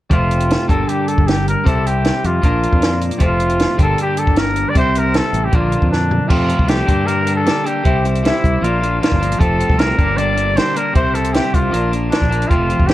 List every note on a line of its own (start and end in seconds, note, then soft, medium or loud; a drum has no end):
0.10 0.55 F1 medium
0.10 0.67 F2 medium
0.10 0.68 C3 medium
0.10 0.68 F3 medium
0.10 0.69 A3 medium
0.10 0.69 C4 medium
0.10 0.65 F4 medium
0.10 kick medium
0.10 closed hi-hat soft
0.31 closed hi-hat soft
0.41 closed hi-hat soft
0.51 snare medium
0.51 closed hi-hat soft
0.68 0.84 G1 medium
0.68 1.64 G2 medium
0.68 1.63 D3 medium
0.68 1.64 G3 medium
0.68 1.65 A#3 medium
0.68 1.65 D4 medium
0.68 0.90 A4 medium
0.68 kick medium
0.68 closed hi-hat soft
0.89 1.09 G4 medium
0.89 closed hi-hat medium
1.08 1.29 A4 medium
1.08 closed hi-hat soft
1.18 1.55 G1 medium
1.18 kick medium
1.27 1.46 G4 medium
1.27 snare medium
1.27 closed hi-hat soft
1.48 1.68 A#4 medium
1.48 closed hi-hat soft
1.64 2.10 C2 medium
1.64 2.41 C3 medium
1.64 2.42 G3 medium
1.64 2.42 C4 medium
1.64 2.43 E4 medium
1.64 1.88 A4 medium
1.64 kick medium
1.64 closed hi-hat medium
1.86 2.28 G4 medium
1.86 closed hi-hat medium
2.04 snare medium
2.04 closed hi-hat soft
2.24 2.39 F2 medium
2.24 3.02 F4 medium
2.24 closed hi-hat soft
2.42 2.66 A#1 medium
2.42 3.18 A#2 medium
2.42 3.19 F3 medium
2.42 3.20 A#3 medium
2.42 3.20 D4 medium
2.42 kick medium
2.42 closed hi-hat soft
2.63 closed hi-hat soft
2.73 3.09 F2 medium
2.73 kick medium
2.82 snare medium
2.82 closed hi-hat soft
3.01 closed hi-hat soft
3.11 closed hi-hat soft
3.18 3.65 F1 medium
3.18 3.76 F2 medium
3.18 3.77 C3 medium
3.18 3.77 F3 medium
3.18 3.78 A3 medium
3.18 3.78 C4 medium
3.18 kick medium
3.18 closed hi-hat medium
3.24 3.76 F4 medium
3.40 closed hi-hat soft
3.49 closed hi-hat soft
3.59 snare medium
3.59 closed hi-hat soft
3.77 3.94 G1 medium
3.77 4.73 G2 medium
3.77 4.73 D3 medium
3.77 4.74 G3 medium
3.77 4.75 A#3 medium
3.77 4.75 D4 medium
3.77 kick medium
3.77 closed hi-hat medium
3.82 3.98 A4 medium
3.98 4.20 G4 medium
3.98 closed hi-hat medium
4.17 4.40 A4 medium
4.17 closed hi-hat medium
4.27 4.64 G1 medium
4.27 kick medium
4.36 4.71 A#4 medium
4.36 snare medium
4.36 closed hi-hat medium
4.56 closed hi-hat soft
4.69 4.77 D5 medium
4.74 5.20 C2 medium
4.74 5.51 C3 medium
4.74 5.51 G3 medium
4.74 5.52 C4 medium
4.74 5.52 E4 medium
4.74 kick medium
4.74 closed hi-hat medium
4.79 5.00 C5 medium
4.95 5.18 A#4 medium
4.95 closed hi-hat medium
5.14 5.46 A4 medium
5.14 snare medium
5.14 closed hi-hat soft
5.33 5.48 A1 medium
5.33 closed hi-hat medium
5.45 5.57 G4 medium
5.51 5.75 A#1 medium
5.51 6.28 A#2 medium
5.51 6.29 D3 medium
5.51 6.29 F3 medium
5.51 6.30 A#3 medium
5.51 6.30 D4 medium
5.51 kick medium
5.51 closed hi-hat soft
5.55 5.90 F4 medium
5.72 closed hi-hat soft
5.82 6.19 F2 medium
5.82 kick medium
5.91 6.30 D4 medium
5.91 snare soft
6.11 floor tom medium
6.28 6.68 F2 medium
6.28 6.53 F2 medium
6.28 6.65 C3 medium
6.28 6.49 F3 medium
6.28 6.48 A3 medium
6.28 6.46 C4 medium
6.28 6.71 F4 medium
6.28 kick medium
6.28 crash medium
6.47 6.66 F3 soft
6.47 6.67 A3 soft
6.47 6.68 C4 medium
6.47 closed hi-hat soft
6.59 6.81 C2 medium
6.59 kick medium
6.66 6.86 C3 medium
6.66 6.86 F3 medium
6.66 6.87 A3 medium
6.66 6.86 C4 medium
6.66 7.08 G4 medium
6.66 snare medium
6.66 closed hi-hat medium
6.86 7.05 G2 medium
6.86 7.48 G2 medium
6.86 7.05 D3 medium
6.86 7.06 G3 medium
6.86 7.07 A#3 medium
6.86 7.07 D4 medium
6.86 kick medium
6.86 closed hi-hat soft
7.06 7.45 G2 medium
7.06 7.44 D3 medium
7.06 7.27 G3 medium
7.06 7.26 A#3 medium
7.06 7.24 D4 medium
7.06 7.35 A#4 medium
7.06 closed hi-hat medium
7.25 7.45 G3 soft
7.25 7.46 A#3 medium
7.25 7.47 D4 medium
7.25 closed hi-hat medium
7.35 7.67 A4 medium
7.45 7.83 D3 medium
7.45 7.66 G3 medium
7.45 7.64 A#3 medium
7.45 7.63 D4 medium
7.45 snare medium
7.45 closed hi-hat medium
7.64 7.83 G3 soft
7.64 7.84 A#3 medium
7.64 7.83 D4 medium
7.64 8.04 G4 medium
7.64 closed hi-hat medium
7.83 8.30 C2 medium
7.83 8.22 C3 medium
7.83 8.05 G3 medium
7.83 8.03 C4 medium
7.83 8.02 E4 medium
7.83 kick medium
7.83 closed hi-hat medium
8.03 8.23 G3 soft
8.03 8.24 C4 soft
8.03 8.25 E4 medium
8.03 closed hi-hat medium
8.15 closed hi-hat soft
8.23 8.61 C3 medium
8.23 8.61 G3 medium
8.23 8.62 C4 medium
8.23 8.65 E4 medium
8.23 8.62 E4 medium
8.23 snare medium
8.23 closed hi-hat medium
8.44 8.58 C2 medium
8.44 kick medium
8.44 closed hi-hat medium
8.61 8.99 A#1 medium
8.61 8.99 A#2 medium
8.61 8.82 F3 medium
8.61 8.80 A#3 medium
8.61 8.79 D4 medium
8.61 9.01 F4 medium
8.61 closed hi-hat soft
8.81 9.00 F3 soft
8.81 9.01 A#3 medium
8.81 9.02 D4 medium
8.81 closed hi-hat soft
9.00 9.38 A#2 medium
9.00 9.20 F3 medium
9.00 9.20 A#3 medium
9.00 9.18 D4 medium
9.00 9.41 F4 medium
9.00 snare medium
9.00 closed hi-hat medium
9.12 9.34 G1 medium
9.12 kick medium
9.19 9.38 F3 medium
9.19 9.39 A#3 medium
9.19 9.38 D4 medium
9.19 closed hi-hat soft
9.31 closed hi-hat medium
9.38 9.62 F1 medium
9.38 9.78 F2 medium
9.38 9.75 C3 medium
9.38 9.60 F3 medium
9.38 9.58 A3 medium
9.38 9.57 C4 medium
9.38 9.81 A4 medium
9.38 kick medium
9.38 closed hi-hat soft
9.58 9.77 F3 soft
9.58 9.77 A3 medium
9.58 9.78 C4 medium
9.58 closed hi-hat soft
9.69 9.91 C2 medium
9.69 kick medium
9.77 9.96 C3 medium
9.77 9.97 F3 medium
9.77 9.97 A3 medium
9.77 9.97 C4 medium
9.77 10.18 A#4 medium
9.77 snare medium
9.77 closed hi-hat medium
9.97 10.57 G1 medium
9.97 10.14 G2 medium
9.97 10.15 D3 medium
9.97 10.16 G3 medium
9.97 10.17 A#3 medium
9.97 10.17 D4 medium
9.97 kick medium
9.97 closed hi-hat soft
10.15 10.55 G2 medium
10.15 10.54 D3 medium
10.15 10.36 G3 medium
10.15 10.35 A#3 medium
10.15 10.34 D4 medium
10.15 10.58 D5 medium
10.15 closed hi-hat medium
10.35 10.55 G3 medium
10.35 10.55 A#3 medium
10.35 10.56 D4 medium
10.35 closed hi-hat medium
10.55 10.93 D3 medium
10.55 10.76 G3 medium
10.55 10.75 A#3 medium
10.55 10.73 D4 medium
10.55 10.78 C5 medium
10.55 snare medium
10.55 closed hi-hat medium
10.74 10.94 G3 soft
10.74 10.94 A#3 medium
10.74 10.93 D4 medium
10.74 10.95 A#4 medium
10.74 closed hi-hat medium
10.93 11.39 C2 medium
10.93 11.32 C3 medium
10.93 11.16 G3 medium
10.93 11.14 C4 medium
10.93 11.12 E4 medium
10.93 11.16 C5 medium
10.93 kick loud
10.93 closed hi-hat medium
11.14 11.33 G3 soft
11.14 11.34 C4 medium
11.14 11.35 E4 medium
11.14 11.35 A4 medium
11.14 closed hi-hat medium
11.24 closed hi-hat medium
11.33 11.71 C3 medium
11.33 11.72 G3 medium
11.33 11.72 C4 medium
11.33 11.73 E4 medium
11.33 11.56 G4 medium
11.33 snare medium
11.33 closed hi-hat medium
11.54 11.69 C2 medium
11.54 11.93 F4 medium
11.54 kick medium
11.54 closed hi-hat medium
11.71 12.10 A#1 medium
11.71 12.09 A#2 medium
11.71 11.93 F3 medium
11.71 11.92 A#3 medium
11.71 11.90 D4 medium
11.71 closed hi-hat soft
11.91 12.10 F3 soft
11.91 12.11 A#3 medium
11.91 12.12 D4 medium
11.91 closed hi-hat soft
12.10 12.48 A#2 medium
12.10 12.31 F3 medium
12.10 12.30 A#3 medium
12.10 12.50 D4 medium
12.10 12.28 D4 medium
12.10 snare medium
12.10 closed hi-hat soft
12.22 12.44 A#1 medium
12.22 kick medium
12.29 12.50 F3 soft
12.29 12.49 A#3 medium
12.29 12.48 D4 medium
12.29 closed hi-hat soft
12.42 closed hi-hat soft
12.48 12.73 F1 medium
12.48 12.89 F2 medium
12.48 12.88 C3 medium
12.48 12.71 F3 medium
12.48 12.89 F4 medium
12.48 kick medium
12.48 closed hi-hat soft
12.52 12.70 A3 medium
12.52 12.68 C4 medium
12.69 12.89 F3 soft
12.69 12.90 A3 soft
12.69 12.90 C4 medium
12.69 closed hi-hat soft
12.80 12.94 F#1 medium
12.80 kick medium
12.87 12.94 C3 medium
12.87 12.94 F3 medium
12.87 12.94 A3 medium
12.87 12.94 G4 medium
12.87 snare medium
12.87 closed hi-hat soft